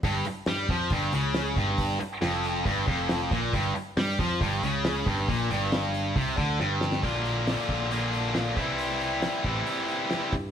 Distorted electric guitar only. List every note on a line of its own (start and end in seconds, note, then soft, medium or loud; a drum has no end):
0.04 0.25 G2 medium
0.27 muted distorted electric guitar stroke soft
0.48 0.69 G3 loud
0.70 0.91 F3 medium
0.92 1.13 G2 medium
1.14 1.56 C#3 medium
1.57 1.99 G2 medium
2.00 muted distorted electric guitar stroke medium
2.22 2.65 F2 medium
2.66 2.87 G2 loud
2.87 3.31 F2 loud
3.32 3.53 A#2 medium
3.53 3.74 G2 medium
3.75 muted distorted electric guitar stroke medium
3.97 4.18 G3 loud
4.19 4.40 F3 medium
4.40 4.62 G2 loud
4.63 5.06 C#3 loud
5.06 5.27 G2 medium
5.28 5.49 A#2 loud
5.50 6.15 G2 medium
6.16 6.37 C3 medium
6.37 6.59 D3 medium
6.59 7.03 G2 medium
7.02 7.89 A#2 medium
7.02 7.90 D3 medium
7.02 7.90 A#3 medium
7.02 7.90 D4 medium
7.02 7.91 F4 medium
7.91 8.55 A#2 medium
7.91 8.56 D3 medium
7.91 8.56 A#3 medium
7.91 8.56 D4 medium
7.91 8.57 F4 medium
8.56 9.43 C3 medium
8.56 9.43 E3 medium
8.56 9.46 G3 medium
8.56 9.44 C4 medium
8.56 9.44 E4 medium
9.45 10.33 C3 medium
9.45 10.32 E3 medium
9.45 10.32 G3 medium
9.45 10.32 C4 medium
9.45 10.32 E4 medium